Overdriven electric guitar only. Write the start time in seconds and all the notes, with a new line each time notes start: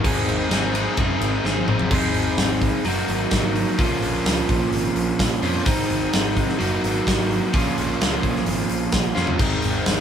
0.04 G#2 D#3 G#3 C4 D#4 G#4
0.50 G#2 D#3 G#3 C4 D#4 G#4
0.74 G#2 D#3 G#3 C4 D#4 G#4
0.97 G#2 D#3 G#3 C4 D#4 G#4
1.44 G#2 D#3 G#3 C4 D#4 G#4
1.68 G#2 D#3 G#3 C4 D#4 G#4
1.92 G#3 C4 D#4 G#4
2.85 F#3 A#3 D#4 F#4
3.78 A#2 F3 A#3 C#4 F4
5.43 A#2 F3 A#3 C#4 F4
5.64 G#2 D#3 G#3 C4 D#4
6.59 F#3 A#3 D#4 F#4
7.53 A#2 F3 A#3 C#4 F4
9.15 A#2 F3 A#3 C#4 F4
9.38 G#2 D#3 G#3 C4 D#4